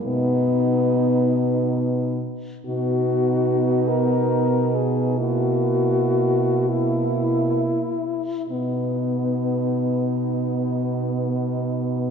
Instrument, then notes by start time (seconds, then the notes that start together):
french horn
0.05 B2 B3 D#4
2.65 B2 B3 D#4 F#4
3.88 A#4
4.75 G#4
5.18 A#3 E4 F#4
6.69 A#3 E4
8.49 B2 B3 D#4